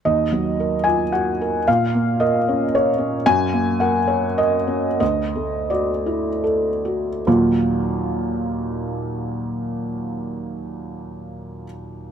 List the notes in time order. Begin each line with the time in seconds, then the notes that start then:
0.05 D#2 D#5
0.32 F#3
0.60 A#4
0.84 F4 G#5
1.12 F#4 F#5
1.41 A#4
1.68 A#2 F5
1.95 A#3
2.20 A#4 D#5
2.49 C#4
2.75 A#4 C#5
2.98 C#4
3.26 F#2 G#5
3.53 A#3
3.80 A#4 F#5
4.08 C#5
4.38 A#4 D#5
4.67 C#4
5.00 D2 D#5
5.36 A3
5.70 F#4 D5
6.06 E4
6.44 A4
6.85 F#4
7.27 D#2 A#2 F#3 A#3 D#4 F4